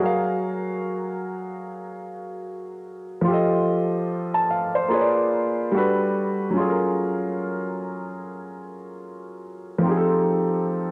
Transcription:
0.00 3.20 F#3 medium
0.00 3.22 F#4 medium
0.00 3.23 G#4 medium
0.00 3.25 A#4 medium
0.05 3.26 F5 medium
3.21 4.85 F3 medium
3.21 4.87 F4 medium
3.28 4.88 G4 medium
3.28 4.90 A4 medium
3.34 4.11 D#5 medium
4.34 4.50 A5 medium
4.51 4.73 F5 medium
4.75 5.13 C5 medium
4.88 5.72 A#3 medium
4.88 5.73 F4 medium
4.88 5.73 G#4 medium
4.93 5.74 B4 medium
4.93 5.00 C#5 medium
5.01 5.78 D5 medium
5.71 6.55 G3 medium
5.71 6.55 D4 medium
5.71 6.56 F#4 medium
5.76 6.57 A4 medium
5.76 6.57 B4 medium
6.50 9.78 F#3 medium
6.50 9.79 C#4 medium
6.56 9.81 F4 medium
6.56 9.82 G#4 medium
6.62 6.66 A4 medium
6.69 9.87 A#4 medium
9.79 10.91 F3 medium
9.79 10.91 C4 medium
9.85 10.91 D#4 medium
9.85 10.91 G4 medium
9.91 9.95 G#4 medium
9.97 10.91 A4 medium

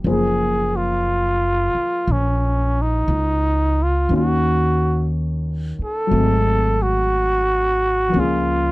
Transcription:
0.04 1.71 F#1 medium
0.04 4.11 F3 soft
0.04 4.10 A#3 soft
0.04 4.12 G#4 soft
0.04 4.11 C5 soft
0.08 0.78 G#4 medium
0.76 2.13 F4 medium
1.75 muted upright bass stroke soft
2.07 3.05 A#1 medium
2.12 2.83 C#4 medium
2.82 3.84 D#4 medium
3.08 4.06 C#2 medium
3.83 4.13 F4 medium
4.09 5.75 D#2 medium
4.09 6.13 D#3 soft
4.09 6.13 A#3 soft
4.09 6.13 C#4 soft
4.09 6.14 F#4 soft
4.16 5.10 F#4 medium
5.79 muted upright bass stroke soft
5.84 6.84 A4 medium
6.07 8.12 F#3 soft
6.07 8.13 A3 soft
6.11 8.10 G#1 medium
6.11 8.15 C4 soft
6.18 8.17 G#3 soft
6.82 8.21 F#4 medium
8.08 8.72 F3 soft
8.08 8.72 A#3 soft
8.14 8.72 C#2 medium
8.14 8.72 C#4 soft
8.19 8.72 F4 medium
8.19 8.72 G#4 soft

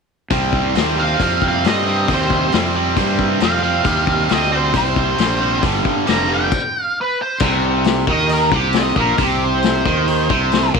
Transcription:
0.31 0.74 C2 medium
0.31 0.75 C3 medium
0.31 0.76 G3 medium
0.31 0.76 C4 medium
0.31 kick medium
0.31 open hi-hat soft
0.53 kick medium
0.75 1.19 D#2 medium
0.75 0.97 C3 medium
0.75 0.98 G3 medium
0.75 0.99 C4 medium
0.75 snare medium
0.75 open hi-hat soft
0.98 1.20 C3 medium
0.98 1.21 G3 medium
0.98 1.21 C4 medium
0.98 1.20 F5 medium
1.20 1.63 F2 medium
1.20 1.64 C3 medium
1.20 1.64 G3 medium
1.20 1.66 C4 medium
1.20 1.43 F5 medium
1.20 kick medium
1.20 open hi-hat soft
1.42 kick medium
1.48 1.66 F5 medium
1.64 2.07 G2 medium
1.64 1.86 C3 medium
1.64 1.86 G3 medium
1.64 1.86 C4 medium
1.64 2.09 D#5 medium
1.64 snare medium
1.64 open hi-hat soft
1.86 2.09 C3 medium
1.86 2.09 G3 medium
1.86 2.10 C4 medium
2.08 2.52 D#2 medium
2.08 2.53 C3 medium
2.08 2.53 G3 medium
2.08 2.54 C4 medium
2.08 kick medium
2.08 open hi-hat soft
2.14 2.54 C5 medium
2.30 kick medium
2.52 2.96 F2 medium
2.52 2.75 C3 medium
2.52 2.75 G3 medium
2.52 2.76 C4 medium
2.52 snare medium
2.52 open hi-hat soft
2.75 2.96 C3 medium
2.75 2.97 G3 medium
2.75 2.97 C4 medium
2.96 3.40 G2 medium
2.96 3.40 C3 medium
2.96 3.41 G3 medium
2.96 3.41 C4 medium
2.96 kick medium
2.96 open hi-hat soft
3.19 kick medium
3.40 3.85 F2 medium
3.40 3.61 C3 medium
3.40 3.62 G3 medium
3.40 3.62 C4 medium
3.40 4.28 F5 medium
3.40 snare loud
3.40 open hi-hat soft
3.62 3.85 C3 medium
3.62 3.85 G3 medium
3.62 3.85 C4 medium
3.85 4.29 D#2 medium
3.85 4.29 C3 medium
3.85 4.30 G3 medium
3.85 4.30 C4 medium
3.85 kick loud
3.85 open hi-hat soft
4.07 kick medium
4.29 4.74 D2 medium
4.29 4.50 C3 medium
4.29 4.51 G3 medium
4.29 4.51 C4 medium
4.29 4.53 D#5 medium
4.29 snare medium
4.29 open hi-hat soft
4.51 4.73 C3 medium
4.51 4.73 G3 medium
4.51 4.73 C4 medium
4.51 4.75 C5 medium
4.74 5.18 C2 medium
4.74 5.18 C3 medium
4.74 5.18 G3 medium
4.74 5.19 C4 medium
4.74 5.62 C5 medium
4.74 kick medium
4.74 open hi-hat soft
4.96 kick medium
5.18 5.62 A#1 medium
5.18 5.39 C3 medium
5.18 5.39 G3 medium
5.18 5.40 C4 medium
5.18 snare medium
5.18 open hi-hat soft
5.40 5.62 C3 medium
5.40 5.62 G3 medium
5.40 5.62 C4 medium
5.62 5.84 G1 medium
5.62 6.06 G2 medium
5.62 6.06 D3 medium
5.62 6.06 G3 medium
5.62 kick loud
5.62 open hi-hat soft
5.85 muted fingered electric bass stroke soft
5.85 kick medium
6.07 6.51 F1 medium
6.07 6.27 G2 medium
6.07 6.28 D3 medium
6.07 6.29 G3 medium
6.07 6.30 A#5 medium
6.07 snare medium
6.07 open hi-hat soft
6.28 6.50 G2 medium
6.28 6.50 D3 medium
6.28 6.51 G3 medium
6.33 6.83 G5 medium
6.52 kick medium
6.52 crash medium
6.83 6.96 F5 medium
7.01 7.20 B4 medium
7.22 7.42 C5 medium
7.40 8.03 C2 medium
7.40 8.07 C3 medium
7.40 kick medium
7.40 crash medium
7.84 snare loud
7.84 open hi-hat soft
8.07 8.49 D#2 medium
8.07 8.51 D#3 medium
8.07 8.31 D#5 medium
8.07 kick loud
8.29 8.53 A#4 medium
8.29 open hi-hat soft
8.52 8.94 C2 medium
8.52 8.96 C3 medium
8.52 8.75 G4 medium
8.52 kick medium
8.73 snare loud
8.73 open hi-hat soft
8.77 8.97 D#5 medium
8.96 9.17 A#1 medium
8.96 9.17 A#2 medium
8.96 9.20 A#4 medium
8.96 kick medium
9.18 9.81 C2 medium
9.18 9.84 C3 medium
9.18 kick medium
9.18 open hi-hat soft
9.23 9.43 G4 medium
9.44 10.72 C5 medium
9.63 snare loud
9.63 open hi-hat soft
9.86 10.27 D#2 medium
9.86 10.29 D#3 medium
9.86 kick medium
10.08 open hi-hat soft
10.30 10.72 C2 medium
10.30 10.74 C3 medium
10.30 kick medium
10.52 snare medium
10.52 open hi-hat soft
10.74 10.80 A#1 medium
10.74 10.80 A#2 medium
10.74 kick medium

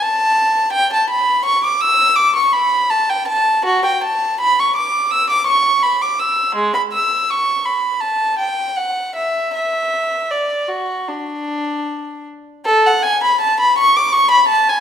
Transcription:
0.02 0.74 A5 medium
0.73 0.91 G5 medium
0.93 1.10 A5 medium
1.10 1.45 B5 medium
1.45 1.63 C#6 medium
1.64 1.82 D6 medium
1.81 2.17 E6 medium
2.15 2.35 D6 medium
2.36 2.54 C#6 medium
2.53 2.90 B5 medium
2.90 3.08 A5 medium
3.09 3.27 G5 medium
3.28 3.64 A5 medium
3.65 3.84 F#4 medium
3.85 4.03 G5 medium
4.04 4.39 A5 medium
4.41 4.58 B5 medium
4.60 4.77 C#6 medium
4.76 5.11 D6 medium
5.11 5.30 E6 medium
5.30 5.48 D6 medium
5.47 5.83 C#6 medium
5.83 6.02 B5 medium
6.02 6.20 D6 medium
6.19 6.56 E6 medium
6.55 6.74 G#3 medium
6.74 6.82 B5 medium
6.92 7.28 E6 medium
7.30 7.66 C#6 medium
7.66 8.02 B5 medium
8.00 8.39 A5 medium
8.38 8.76 G5 medium
8.76 9.15 F#5 medium
9.16 9.53 E5 medium
9.54 10.30 E5 medium
10.31 10.69 D5 medium
10.68 11.08 F#4 medium
11.08 12.25 D4 medium
12.65 12.84 A4 medium
12.86 13.04 F#5 medium
13.03 13.21 G#5 medium
13.24 13.41 B5 medium
13.41 13.58 A5 medium
13.60 13.77 B5 medium
13.78 13.95 C#6 medium
13.96 14.14 D6 medium
14.13 14.31 C#6 medium
14.31 14.49 B5 medium
14.48 14.66 A5 medium
14.69 14.80 G#5 medium

